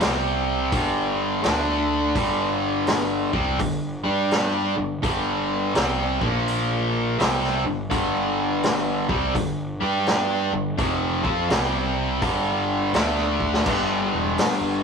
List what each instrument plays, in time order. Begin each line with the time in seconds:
0.00 picked electric bass C2, overdriven electric guitar C3 G3 C4, snare, open hi-hat
0.72 picked electric bass G1, overdriven electric guitar G2 D3 G3, kick, open hi-hat
1.43 picked electric bass D2, overdriven electric guitar D3 A3 D4, snare, open hi-hat
2.15 picked electric bass G1, overdriven electric guitar G2 D3 G3, kick, open hi-hat
2.87 snare, open hi-hat
3.33 picked electric bass C2, overdriven electric guitar C3 G3 C4, kick
3.59 picked electric bass G1, overdriven electric guitar G2 D3, kick, open hi-hat
4.04 picked electric bass G2, overdriven electric guitar G3 D4 G4
4.31 snare, open hi-hat
4.77 picked electric bass G1, overdriven electric guitar G2 D3
5.03 picked electric bass G1, overdriven electric guitar G2 D3 G3, kick, open hi-hat
5.75 picked electric bass C2, overdriven electric guitar C3 G3 C4, snare, open hi-hat
6.21 picked electric bass A#1, overdriven electric guitar A#2 F3 A#3, kick
6.48 open hi-hat
7.18 picked electric bass C2, overdriven electric guitar C3 G3 C4, snare, open hi-hat
7.44 snare
7.65 picked electric bass G1, overdriven electric guitar G2 D3
7.90 picked electric bass G1, overdriven electric guitar G2 D3 G3, kick, open hi-hat
8.63 snare, open hi-hat
9.09 picked electric bass C2, overdriven electric guitar C3 G3 C4, kick
9.35 picked electric bass G1, overdriven electric guitar G2 D3, kick, open hi-hat
9.80 picked electric bass G2, overdriven electric guitar G3 D4 G4
10.06 snare, open hi-hat
10.53 picked electric bass G1, overdriven electric guitar G2 D3
10.77 picked electric bass F1, overdriven electric guitar F2 C3 F3, kick, open hi-hat
11.23 picked electric bass F2, overdriven electric guitar F3 C4 F4, kick
11.49 picked electric bass C2, overdriven electric guitar C3 G3 C4, snare, open hi-hat
12.22 picked electric bass G1, overdriven electric guitar G2 D3 G3, kick, open hi-hat
12.94 picked electric bass D2, overdriven electric guitar D3 A3 D4, snare, open hi-hat
13.18 snare
13.40 kick
13.54 snare
13.65 picked electric bass G1, overdriven electric guitar G2 D3 G3, kick, crash
14.13 picked electric bass E1
14.38 snare, open hi-hat
14.61 picked electric bass G1